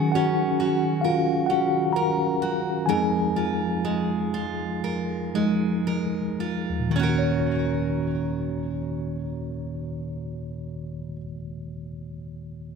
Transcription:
Already playing: tine electric piano D#3 F#3 C#4 G#4 G#5, steel-string acoustic guitar D#3 C#4 F#4 A#4
0.12 steel-string acoustic guitar C#4, tine electric piano F#4 F#5
0.60 steel-string acoustic guitar F#4
1.01 tine electric piano F4 F5, steel-string acoustic guitar A#4
1.46 steel-string acoustic guitar C#4, tine electric piano F#4 F#5
1.93 tine electric piano A#4 A#5, steel-string acoustic guitar A#4
2.42 steel-string acoustic guitar F#4
2.86 steel-string acoustic guitar F2 A#4, tine electric piano F3 G#3 D#4 G#4 G#5
3.36 steel-string acoustic guitar F4
3.85 steel-string acoustic guitar G#3
4.34 steel-string acoustic guitar F4
4.84 steel-string acoustic guitar A#4
5.34 tine electric piano F3 G#3 D#4, steel-string acoustic guitar G#3
5.87 steel-string acoustic guitar A#4
6.40 steel-string acoustic guitar F4
6.69 tine electric piano D#2
6.80 tine electric piano A#2
6.89 tine electric piano D#3, steel-string acoustic guitar D#3
6.96 tine electric piano A#3, steel-string acoustic guitar C#4 F#4
7.03 steel-string acoustic guitar A#4
7.09 tine electric piano F#4
7.19 tine electric piano C#5

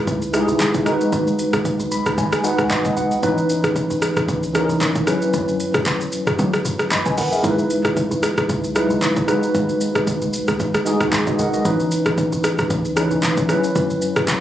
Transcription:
Already playing: tine electric piano G#3 D#4 E4 B4
0.07 log drum bass C#2, kick, shaker
0.22 shaker
0.33 tine electric piano G#3 D#4 E4 G4, cross-stick, shaker
0.41 tine electric piano G#4
0.48 log drum bass B1, shaker
0.60 kick, clap, shaker
0.74 kick, shaker
0.85 tine electric piano G#3 D#4 F#4 A#4, cross-stick, shaker
0.94 tine electric piano B4
1.01 shaker
1.12 log drum bass D#2, kick, shaker
1.27 shaker
1.39 shaker
1.53 log drum bass D#2, cross-stick, shaker
1.65 kick, shaker
1.80 log drum bass B1, shaker
1.92 tine electric piano B5, shaker
2.06 log drum bass C#2, cross-stick, shaker
2.18 log drum bass D#2, tine electric piano G#5, kick, shaker
2.32 cross-stick, shaker
2.43 tine electric piano G#3 D#4 F#4 B4 F#5, shaker
2.58 log drum bass C#2, cross-stick, shaker
2.70 log drum bass D#2, tine electric piano D#5, kick, clap, shaker
2.85 kick, shaker
2.97 log drum bass B1, tine electric piano F#5, shaker
3.11 shaker
3.22 log drum bass E2, tine electric piano E3 C#4 D#4 B4, kick, shaker
3.38 shaker
3.49 shaker
3.64 log drum bass D#2, cross-stick, shaker
3.76 kick, shaker
3.90 log drum bass E2, shaker
4.02 cross-stick, shaker
4.16 log drum bass E2, cross-stick, shaker
4.29 log drum bass C#2, kick, shaker
4.43 shaker
4.54 tine electric piano E3 C#4 D#4 A#4, cross-stick, shaker
4.69 log drum bass B1, shaker
4.81 kick, clap, shaker
4.95 kick, shaker
5.06 tine electric piano F#3 C#4 E4 B4, cross-stick, shaker
5.22 shaker
5.34 log drum bass F#2, kick, shaker
5.48 shaker
5.60 shaker
5.74 log drum bass F#2, cross-stick, shaker
5.86 kick, clap, shaker
6.01 log drum bass E2, shaker
6.12 shaker
6.27 log drum bass F#2, cross-stick, shaker
6.39 log drum bass F#3, kick, shaker
6.53 cross-stick, shaker
6.65 log drum bass F#2, shaker
6.79 cross-stick, shaker
6.91 log drum bass F#2, tine electric piano D#5 B5, kick, clap, shaker
7.06 tine electric piano B4 G#5, kick, shaker
7.18 log drum bass D#2, tine electric piano A#4 F#5, open hi-hat, shaker
7.32 tine electric piano G#4 E5, shaker
7.43 log drum bass E2, tine electric piano G#3 D#4 E4 A#4, kick, shaker
7.51 tine electric piano B4
7.59 shaker
7.70 shaker
7.85 log drum bass D#2, cross-stick, shaker
7.97 kick, shaker
8.11 log drum bass E2, shaker
8.23 cross-stick, shaker
8.38 log drum bass E2, cross-stick, shaker
8.49 log drum bass C#2, kick, shaker
8.64 shaker
8.75 tine electric piano F#3 D#4 E4 B4, cross-stick, shaker
8.81 tine electric piano G#3
8.90 log drum bass B1, shaker
9.02 kick, clap, shaker
9.16 kick, shaker
9.27 tine electric piano G#3 D#4 F#4 B4, cross-stick, shaker
9.43 shaker
9.55 log drum bass D#2, kick, shaker
9.69 shaker
9.81 shaker
9.95 log drum bass D#2, cross-stick, shaker
10.07 kick, shaker
10.22 log drum bass B1, shaker
10.33 shaker
10.48 log drum bass C#2, cross-stick, shaker
10.60 log drum bass D#2, kick, shaker
10.74 cross-stick, shaker
10.85 tine electric piano G#3 D#4 F#4 G#4, shaker
11.01 log drum bass C#2, cross-stick, shaker
11.12 log drum bass D#2, kick, clap, shaker
11.27 tine electric piano F#4 D#5, kick, shaker
11.39 log drum bass B1, tine electric piano A#4 F#5, shaker
11.53 tine electric piano F#4 D#5, shaker
11.64 log drum bass E2, tine electric piano E3 C#4 D#4 B4, kick, shaker
11.80 shaker
11.91 shaker
12.06 log drum bass D#2, cross-stick, shaker
12.18 kick, shaker
12.32 log drum bass E2, shaker
12.44 cross-stick, shaker
12.59 log drum bass E2, cross-stick, shaker
12.70 log drum bass C#2, kick, shaker
12.85 shaker
12.96 tine electric piano E3 C#4 D#4 B4, cross-stick, shaker
13.11 log drum bass B1, shaker
13.23 kick, clap, shaker
13.37 kick, shaker
13.48 tine electric piano F#3 C#4 E4 B4, cross-stick, shaker
13.64 shaker
13.76 log drum bass F#2, kick, shaker
13.90 shaker
14.02 shaker
14.16 log drum bass F#2, cross-stick, shaker
14.28 kick, clap, shaker

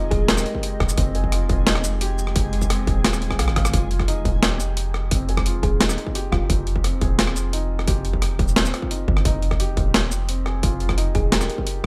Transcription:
Already playing: 808-style bass F1, analog synth pad G#3 F4 D#5 G5, synth texture G#3, felt piano C4 D#4 F4 G4 G#4
0.11 808-style bass D#1, synth pluck G#4, kick, closed hi-hat
0.28 felt piano G4, synth pluck A#4, snare, closed hi-hat
0.37 cross-stick, snare, shaker
0.46 closed hi-hat
0.55 kick
0.63 closed hi-hat
0.80 808-style bass D#1, kick, cross-stick
0.89 shaker
0.98 808-style bass F1, felt piano C4, kick, closed hi-hat
1.15 felt piano G#4, closed hi-hat
1.24 kick
1.32 felt piano F4, cross-stick, closed hi-hat
1.49 808-style bass D#1, felt piano F4, kick, closed hi-hat
1.67 felt piano D#4, snare, closed hi-hat
1.75 cross-stick
1.84 808-style bass F1, closed hi-hat, shaker
2.01 felt piano G4, closed hi-hat
2.18 shaker
2.27 cross-stick
2.36 808-style bass F1, kick, closed hi-hat
2.53 closed hi-hat
2.62 kick, shaker
2.70 felt piano C4, cross-stick, closed hi-hat
2.87 808-style bass D#1, felt piano G#4, kick, closed hi-hat
3.04 felt piano F4, cross-stick, snare, closed hi-hat
3.13 cross-stick, shaker
3.22 closed hi-hat
3.31 kick, cross-stick
3.39 808-style bass C2, felt piano F5, cross-stick, closed hi-hat
3.48 808-style bass G#1, cross-stick
3.56 felt piano F5, kick, cross-stick, closed hi-hat
3.65 cross-stick, shaker
3.73 808-style bass F1, felt piano F4, kick, closed hi-hat
3.91 felt piano F4, closed hi-hat
3.99 kick, cross-stick
4.08 felt piano D#4, closed hi-hat
4.25 808-style bass D#1, kick, closed hi-hat
4.42 felt piano G4, cross-stick, snare, closed hi-hat
4.60 808-style bass F1, closed hi-hat, shaker
4.77 closed hi-hat
4.94 cross-stick
5.11 808-style bass F1, felt piano C4, kick, closed hi-hat
5.29 felt piano G#4, closed hi-hat
5.37 kick, cross-stick
5.46 felt piano F4, closed hi-hat
5.63 808-style bass D#1, felt piano F4, synth pluck G#4, kick, closed hi-hat
5.80 felt piano D#4, snare, closed hi-hat
5.89 cross-stick, snare, shaker
5.98 closed hi-hat
6.07 kick
6.15 felt piano G4, closed hi-hat
6.32 808-style bass D#1, synth pluck F4, kick, cross-stick
6.50 808-style bass F1, kick, closed hi-hat
6.67 closed hi-hat
6.76 kick
6.84 felt piano C4, cross-stick, closed hi-hat
7.01 808-style bass D#1, felt piano G#4, kick, closed hi-hat
7.18 felt piano F4, snare, closed hi-hat
7.27 cross-stick
7.35 808-style bass F1, felt piano F4, closed hi-hat, shaker
7.53 felt piano D#4, closed hi-hat
7.79 cross-stick
7.87 808-style bass F1, felt piano G4, kick, closed hi-hat
8.05 closed hi-hat
8.13 kick
8.22 cross-stick, closed hi-hat
8.39 808-style bass D#1, kick, closed hi-hat
8.48 shaker
8.56 felt piano C4, snare, closed hi-hat
8.65 snare, shaker
8.73 felt piano F4, cross-stick, closed hi-hat
8.82 kick
8.91 felt piano D#4, closed hi-hat
9.08 808-style bass G1, kick
9.17 cross-stick
9.25 808-style bass F1, felt piano D#4, kick, closed hi-hat
9.42 closed hi-hat
9.51 kick, cross-stick
9.60 felt piano G4, closed hi-hat
9.77 808-style bass D#1, kick, closed hi-hat
9.94 cross-stick, snare, closed hi-hat
10.11 808-style bass F1, closed hi-hat, shaker
10.29 felt piano C4, closed hi-hat
10.46 felt piano G#4, cross-stick
10.63 808-style bass F1, felt piano F4, kick, closed hi-hat
10.80 felt piano F4, closed hi-hat
10.89 kick, cross-stick
10.98 felt piano D#4, closed hi-hat
11.15 808-style bass D#1, synth pluck G#4, kick, closed hi-hat
11.32 felt piano G4, synth pluck A#4, snare, closed hi-hat
11.41 cross-stick, snare, shaker
11.50 closed hi-hat
11.58 kick
11.67 closed hi-hat

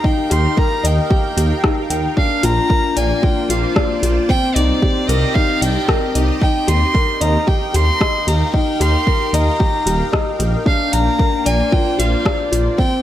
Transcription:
Already playing: analog synth pad D#4 A#4 F5 G5, felt piano G4 A#4 D#5
0.04 felt piano D#4, violin G5, kick
0.30 detuned saw bass D#2, felt piano G4, violin C6, closed hi-hat
0.56 felt piano A#4, violin A#5, kick
0.84 detuned saw bass D#2, felt piano D#5, violin G5, closed hi-hat
1.10 felt piano G4, kick
1.37 detuned saw bass D#2, felt piano G4, closed hi-hat
1.64 felt piano D#4, kick, cross-stick
1.90 detuned saw bass D#2, felt piano G5, closed hi-hat
2.17 analog synth pad A#3, felt piano D4, violin F5, kick
2.43 detuned saw bass A#1, felt piano F4, violin A#5, closed hi-hat
2.69 felt piano A#4, kick
2.76 analog synth pad F4
2.85 analog synth pad D5
2.96 detuned saw bass A#1, felt piano D5, violin G#5, closed hi-hat
3.07 analog synth pad C5
3.22 felt piano F4, violin G5, kick
3.49 detuned saw bass A#1, felt piano F4, violin F5, closed hi-hat
3.76 felt piano D5, kick, cross-stick
4.03 detuned saw bass A#1, felt piano F4, closed hi-hat
4.29 felt piano C4, analog synth pad C4, violin G5, kick
4.44 analog synth pad G4
4.55 detuned saw bass C2, felt piano D#4, violin D5, closed hi-hat
4.82 felt piano G4, kick
5.08 detuned saw bass C2, felt piano A#4, violin D#5, closed hi-hat
5.26 analog synth pad D#5
5.34 felt piano D#4, violin F5, kick
5.61 detuned saw bass C2, felt piano D#4, violin G5, closed hi-hat
5.88 felt piano A#4, kick, cross-stick
6.15 detuned saw bass C2, felt piano D#4, closed hi-hat
6.41 felt piano D#4, analog synth pad D#4, violin G5, kick
6.67 detuned saw bass D#2, felt piano G4, analog synth pad A#4, violin C6, closed hi-hat
6.93 felt piano A#4, analog synth pad G5, kick
7.10 analog synth pad F5
7.21 detuned saw bass D#2, felt piano D#5, violin A#5, closed hi-hat
7.47 felt piano G4, violin G5, kick
7.74 detuned saw bass D#2, felt piano G4, violin C6, closed hi-hat
8.00 felt piano D#5, kick, cross-stick
8.27 detuned saw bass D#2, felt piano G4, violin A#5, closed hi-hat
8.54 felt piano D#4, violin G5, kick
8.80 detuned saw bass D#2, felt piano G4, violin C6, closed hi-hat
9.07 felt piano A#4, kick
9.33 detuned saw bass D#2, felt piano D#5, violin A#5, closed hi-hat
9.60 felt piano G4, kick
9.86 detuned saw bass D#1, felt piano G4, closed hi-hat
10.12 felt piano D#5, kick, cross-stick
10.39 detuned saw bass A#1, felt piano G4, closed hi-hat
10.66 analog synth pad A#3, felt piano D4, violin F5, kick
10.92 detuned saw bass A#1, felt piano F5, violin A#5, closed hi-hat
11.18 analog synth pad F4 C5, felt piano A#4, kick
11.46 detuned saw bass A#1, felt piano D5, violin G#5, closed hi-hat
11.61 analog synth pad D5
11.72 felt piano F4, violin G5, kick
11.99 detuned saw bass A#1, felt piano F4, violin F5, closed hi-hat
12.25 felt piano D5, kick, cross-stick
12.52 detuned saw bass A#1, felt piano F4, closed hi-hat
12.78 felt piano C4, analog synth pad C4, violin G5, kick

